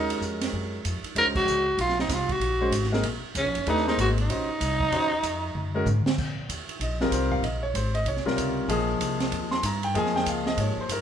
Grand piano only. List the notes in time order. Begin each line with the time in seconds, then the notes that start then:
Already playing: G#3 C#4 F#4 A#4
1.16 G#3 C#4 F#4 C5
2.61 G#3 C#4 F#4 C5
2.92 A#3 D#4 G#4 A#4
3.67 A3 D4 G4 B4
3.87 A#3 D#4 G#4 C5
4.30 C#4 F#4 C5 D#5
4.92 C#4 F#4 C5 D#5
5.75 G#3 C#4 F#4 A#4
6.82 D#5
7.01 G3 C4 F4 G#4 A#4
7.12 C5
7.32 F5
7.43 D#5
7.63 C#5
7.76 C5
7.95 D#5
8.08 C#5
8.25 C3 G3 F4 A#4
8.69 F3 A#3 D#4 G#4
9.51 C6
9.66 A#5
9.84 G5
9.94 F3 A#3 D#4 G#4 G#5
10.16 G5
10.29 F5
10.47 D#5
10.60 C#5
10.81 C5
10.92 A#4